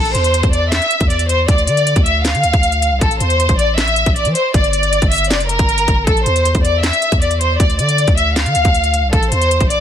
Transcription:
Already playing: A1 A4
0.05 closed hi-hat
0.14 E2 C5, closed hi-hat
0.24 closed hi-hat
0.34 closed hi-hat
0.43 E2, kick, closed hi-hat
0.53 D5, closed hi-hat
0.72 E5, snare, clap, closed hi-hat
0.82 closed hi-hat
0.91 closed hi-hat
1.01 E2, kick, closed hi-hat
1.10 D5, closed hi-hat
1.19 closed hi-hat
1.29 C5, closed hi-hat
1.48 D2 D5, kick, closed hi-hat
1.58 closed hi-hat
1.67 D3 D5, closed hi-hat
1.77 closed hi-hat
1.87 closed hi-hat
1.96 D2, kick, closed hi-hat
2.06 E5, closed hi-hat
2.24 F5, snare, clap, closed hi-hat
2.34 D3, closed hi-hat
2.43 D2, closed hi-hat
2.53 D2, kick, closed hi-hat
2.63 closed hi-hat
2.72 closed hi-hat
2.82 closed hi-hat
2.92 C2
3.01 A1 A4, kick, closed hi-hat
3.11 closed hi-hat
3.20 E2 C5, closed hi-hat
3.30 closed hi-hat
3.40 closed hi-hat
3.49 A1, kick, closed hi-hat
3.59 D5, closed hi-hat
3.77 E5, snare, clap, closed hi-hat
3.88 closed hi-hat
3.96 closed hi-hat
4.06 A1, kick, closed hi-hat
4.16 D5, closed hi-hat
4.25 E3, closed hi-hat
4.35 C5, closed hi-hat
4.54 G1 D5, kick, closed hi-hat
4.64 closed hi-hat
4.73 D5, closed hi-hat
4.83 closed hi-hat
4.93 closed hi-hat
5.02 G1, kick, closed hi-hat
5.12 E5, closed hi-hat, open hi-hat
5.18 closed hi-hat
5.24 closed hi-hat
5.30 F1 D5, snare, clap, closed hi-hat
5.40 closed hi-hat
5.49 A#4, closed hi-hat
5.59 G1, kick, closed hi-hat
5.69 closed hi-hat
5.78 closed hi-hat
5.88 G1, kick, closed hi-hat
6.07 A1 A4, kick, closed hi-hat
6.17 closed hi-hat
6.26 E2 C5, closed hi-hat
6.36 closed hi-hat
6.45 closed hi-hat
6.55 E2, kick, closed hi-hat
6.65 D5, closed hi-hat
6.83 E5, snare, clap, closed hi-hat
6.93 closed hi-hat
7.02 closed hi-hat
7.12 E2, kick, closed hi-hat
7.22 D5, closed hi-hat
7.31 closed hi-hat
7.41 C5, closed hi-hat
7.60 D2 D5, kick, closed hi-hat
7.70 closed hi-hat
7.79 D3 D5, closed hi-hat
7.89 closed hi-hat
7.98 closed hi-hat
8.08 D2, kick, closed hi-hat
8.18 E5, closed hi-hat
8.36 F5, snare, clap, closed hi-hat
8.46 D3, closed hi-hat
8.55 D2, closed hi-hat
8.65 D2, kick, closed hi-hat
8.75 closed hi-hat
8.84 closed hi-hat
8.94 closed hi-hat
9.03 C2
9.13 A1 A4, kick, closed hi-hat
9.23 closed hi-hat
9.32 E2 C5, closed hi-hat
9.42 closed hi-hat
9.51 closed hi-hat
9.61 A1, kick, closed hi-hat
9.70 D5, closed hi-hat

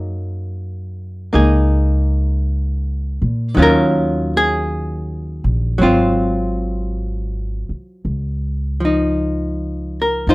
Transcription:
Already playing: F#2 F#3 A#3 D#4 G#4
1.33 C#2 A#3 D#4 G#4
3.22 A#2
3.55 D#2 D#3 F#3 C#4
3.59 F4 A#4
4.37 G#4
5.44 A#1
5.78 G#1 F#3 C4
5.83 F4
7.69 muted upright bass stroke
8.05 C#2
8.80 F3
8.85 D#4
10.02 A#4
10.27 F2 D#4 F4 C5

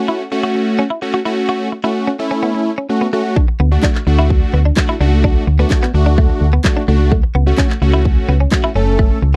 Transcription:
Already playing: A3 C#4 F#4
0.08 E4
0.32 A3 C#4 F#4, muted clean electric guitar stroke
0.43 F#4
0.55 muted clean electric guitar stroke
0.79 C#4
0.90 E4
1.02 A3 C#4 F#4, muted clean electric guitar stroke
1.14 F#4
1.25 A3 C#4 E4 F#4
1.49 F#4
1.72 muted clean electric guitar stroke
1.84 A3 C#4 E4 F#4
2.07 C#4
2.19 A3 C#4 E4, muted clean electric guitar stroke
2.31 C#4
2.43 B3
2.55 muted clean electric guitar stroke
2.78 C#4
2.89 A3 C#4 F#4, muted clean electric guitar stroke
3.01 B3
3.13 A3 C#4 F#4
3.36 D4, kick
3.48 muted clean electric guitar stroke
3.60 D2 B3
3.71 A3 D4 F#4
3.83 D4, kick, snare, clap
3.95 clap
4.07 D2 A3 D4 F#4, muted clean electric guitar stroke
4.19 E4
4.30 muted clean electric guitar stroke, kick
4.54 D2 B3
4.65 D4
4.76 A3 D4 F#4, muted clean electric guitar stroke, kick, snare, clap
4.89 E4
5.00 C#2 A3 D4 F#4
5.24 D4, kick
5.47 D2, muted clean electric guitar stroke
5.59 A3 B3 D4 F#4
5.70 kick, snare, clap
5.83 B3, clap
5.94 D2 A3 D4 F#4, muted clean electric guitar stroke
6.06 D4
6.18 A3, kick
6.30 muted clean electric guitar stroke
6.41 D2
6.53 B3
6.64 A3 D4 F#4, muted clean electric guitar stroke, kick, snare, clap
6.77 D4
6.88 C#2 A3 D4 F#4
7.12 A3, kick
7.23 muted clean electric guitar stroke
7.35 C#2 B3
7.46 A3 C#4 F#4
7.57 C#4, kick, snare, clap
7.70 clap
7.82 C#2 A3 C#4 F#4, muted clean electric guitar stroke
7.94 E4
8.05 muted clean electric guitar stroke, kick
8.29 C#2 B3
8.40 C#4
8.51 A3 C#4 F#4, muted clean electric guitar stroke, kick, snare, clap
8.64 E4
8.75 F#1 A3 C#4 A4
8.99 A3, kick
9.22 C#2, muted clean electric guitar stroke

